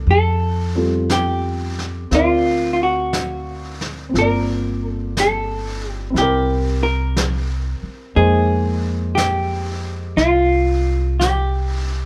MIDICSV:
0, 0, Header, 1, 6, 480
1, 0, Start_track
1, 0, Key_signature, -4, "minor"
1, 0, Tempo, 1016949
1, 31, Time_signature, 4, 2, 24, 8
1, 2431, Tempo, 1006711
1, 5723, End_track
2, 0, Start_track
2, 0, Title_t, "Hollow-body jazz guitar"
2, 0, Program_c, 0, 26
2, 50, Note_on_c, 0, 69, 82
2, 525, Note_off_c, 0, 69, 0
2, 527, Note_on_c, 0, 67, 66
2, 1012, Note_off_c, 0, 67, 0
2, 1014, Note_on_c, 0, 65, 68
2, 1284, Note_off_c, 0, 65, 0
2, 1290, Note_on_c, 0, 65, 41
2, 1322, Note_off_c, 0, 65, 0
2, 1336, Note_on_c, 0, 66, 63
2, 1783, Note_off_c, 0, 66, 0
2, 1976, Note_on_c, 0, 70, 83
2, 2297, Note_off_c, 0, 70, 0
2, 2297, Note_on_c, 0, 69, 83
2, 2452, Note_off_c, 0, 69, 0
2, 2454, Note_on_c, 0, 69, 69
2, 2788, Note_off_c, 0, 69, 0
2, 2788, Note_on_c, 0, 67, 69
2, 2920, Note_off_c, 0, 67, 0
2, 2922, Note_on_c, 0, 67, 70
2, 3231, Note_off_c, 0, 67, 0
2, 3233, Note_on_c, 0, 70, 76
2, 3688, Note_off_c, 0, 70, 0
2, 3868, Note_on_c, 0, 68, 90
2, 4336, Note_off_c, 0, 68, 0
2, 4338, Note_on_c, 0, 67, 74
2, 4823, Note_off_c, 0, 67, 0
2, 4825, Note_on_c, 0, 65, 76
2, 5312, Note_off_c, 0, 65, 0
2, 5313, Note_on_c, 0, 67, 59
2, 5723, Note_off_c, 0, 67, 0
2, 5723, End_track
3, 0, Start_track
3, 0, Title_t, "Grand piano"
3, 0, Program_c, 1, 0
3, 0, Control_c, 1, 64, 127
3, 37, Control_c, 1, 64, 0
3, 123, Control_c, 1, 64, 127
3, 354, Note_on_c, 1, 55, 36
3, 356, Note_on_c, 1, 60, 34
3, 360, Note_on_c, 1, 65, 31
3, 362, Note_on_c, 1, 69, 44
3, 989, Note_off_c, 1, 60, 0
3, 996, Note_on_c, 1, 60, 46
3, 999, Note_off_c, 1, 55, 0
3, 1002, Note_off_c, 1, 65, 0
3, 1003, Note_off_c, 1, 69, 0
3, 1003, Control_c, 1, 64, 0
3, 1003, Note_on_c, 1, 77, 39
3, 1009, Note_on_c, 1, 70, 40
3, 1016, Note_on_c, 1, 74, 51
3, 1099, Control_c, 1, 64, 127
3, 1925, Note_off_c, 1, 60, 0
3, 1932, Note_on_c, 1, 60, 40
3, 1952, Note_on_c, 1, 65, 33
3, 1958, Note_off_c, 1, 77, 0
3, 1960, Control_c, 1, 64, 0
3, 1961, Note_off_c, 1, 70, 0
3, 1965, Note_off_c, 1, 74, 0
3, 1966, Note_on_c, 1, 58, 31
3, 1989, Note_on_c, 1, 74, 43
3, 2054, Control_c, 1, 64, 127
3, 2878, Note_off_c, 1, 60, 0
3, 2885, Note_on_c, 1, 60, 47
3, 2901, Note_on_c, 1, 64, 42
3, 2906, Note_off_c, 1, 65, 0
3, 2913, Note_off_c, 1, 58, 0
3, 2913, Control_c, 1, 64, 0
3, 2919, Note_on_c, 1, 67, 43
3, 2925, Note_off_c, 1, 74, 0
3, 2937, Note_on_c, 1, 70, 52
3, 2995, Control_c, 1, 64, 127
3, 3853, Note_off_c, 1, 60, 0
3, 3861, Note_off_c, 1, 64, 0
3, 3862, Note_on_c, 1, 58, 43
3, 3867, Note_on_c, 1, 63, 35
3, 3869, Note_on_c, 1, 72, 46
3, 3870, Note_off_c, 1, 67, 0
3, 3871, Control_c, 1, 64, 0
3, 3871, Note_on_c, 1, 56, 39
3, 3879, Note_off_c, 1, 70, 0
3, 3949, Control_c, 1, 64, 127
3, 5723, Note_off_c, 1, 56, 0
3, 5723, Note_off_c, 1, 58, 0
3, 5723, Note_off_c, 1, 63, 0
3, 5723, Note_off_c, 1, 72, 0
3, 5723, End_track
4, 0, Start_track
4, 0, Title_t, "Upright bass"
4, 0, Program_c, 2, 32
4, 32, Note_on_c, 2, 41, 70
4, 978, Note_off_c, 2, 41, 0
4, 998, Note_on_c, 2, 38, 60
4, 1937, Note_off_c, 2, 38, 0
4, 1954, Note_on_c, 2, 31, 64
4, 2889, Note_off_c, 2, 31, 0
4, 2905, Note_on_c, 2, 36, 61
4, 3680, Note_off_c, 2, 36, 0
4, 3868, Note_on_c, 2, 41, 71
4, 4808, Note_off_c, 2, 41, 0
4, 4823, Note_on_c, 2, 36, 68
4, 5723, Note_off_c, 2, 36, 0
4, 5723, End_track
5, 0, Start_track
5, 0, Title_t, "Muted upright bass strokes"
5, 3707, Note_on_c, 9, 29, 31
5, 3755, Note_off_c, 9, 29, 0
5, 5723, End_track
6, 0, Start_track
6, 0, Title_t, "Drums"
6, 35, Note_on_c, 9, 25, 29
6, 517, Note_off_c, 9, 25, 0
6, 517, Note_on_c, 9, 25, 32
6, 517, Note_on_c, 9, 38, 39
6, 517, Note_on_c, 9, 44, 43
6, 564, Note_off_c, 9, 38, 0
6, 564, Note_off_c, 9, 44, 0
6, 843, Note_on_c, 9, 38, 20
6, 890, Note_off_c, 9, 38, 0
6, 997, Note_off_c, 9, 25, 0
6, 997, Note_on_c, 9, 25, 32
6, 997, Note_on_c, 9, 38, 24
6, 1044, Note_off_c, 9, 38, 0
6, 1477, Note_off_c, 9, 25, 0
6, 1477, Note_on_c, 9, 25, 35
6, 1477, Note_on_c, 9, 38, 40
6, 1477, Note_on_c, 9, 44, 47
6, 1524, Note_off_c, 9, 38, 0
6, 1524, Note_off_c, 9, 44, 0
6, 1798, Note_on_c, 9, 38, 23
6, 1845, Note_off_c, 9, 38, 0
6, 1959, Note_off_c, 9, 25, 0
6, 1959, Note_on_c, 9, 25, 26
6, 1959, Note_on_c, 9, 38, 22
6, 2006, Note_off_c, 9, 38, 0
6, 2439, Note_off_c, 9, 25, 0
6, 2439, Note_on_c, 9, 25, 34
6, 2439, Note_on_c, 9, 38, 40
6, 2439, Note_on_c, 9, 44, 47
6, 2487, Note_off_c, 9, 38, 0
6, 2487, Note_off_c, 9, 44, 0
6, 2912, Note_off_c, 9, 25, 0
6, 2912, Note_on_c, 9, 25, 27
6, 2912, Note_on_c, 9, 38, 25
6, 2960, Note_off_c, 9, 38, 0
6, 3391, Note_off_c, 9, 25, 0
6, 3391, Note_on_c, 9, 25, 33
6, 3391, Note_on_c, 9, 38, 39
6, 3391, Note_on_c, 9, 44, 46
6, 3439, Note_off_c, 9, 38, 0
6, 3439, Note_off_c, 9, 44, 0
6, 3868, Note_off_c, 9, 25, 0
6, 3868, Note_on_c, 9, 25, 26
6, 4349, Note_off_c, 9, 25, 0
6, 4349, Note_on_c, 9, 25, 38
6, 4349, Note_on_c, 9, 38, 41
6, 4349, Note_on_c, 9, 44, 51
6, 4397, Note_off_c, 9, 38, 0
6, 4397, Note_off_c, 9, 44, 0
6, 4828, Note_off_c, 9, 25, 0
6, 4828, Note_on_c, 9, 25, 31
6, 4828, Note_on_c, 9, 38, 24
6, 4876, Note_off_c, 9, 38, 0
6, 5319, Note_off_c, 9, 25, 0
6, 5319, Note_on_c, 9, 25, 33
6, 5319, Note_on_c, 9, 38, 38
6, 5319, Note_on_c, 9, 44, 50
6, 5367, Note_off_c, 9, 38, 0
6, 5367, Note_off_c, 9, 44, 0
6, 5723, Note_off_c, 9, 25, 0
6, 5723, End_track
0, 0, End_of_file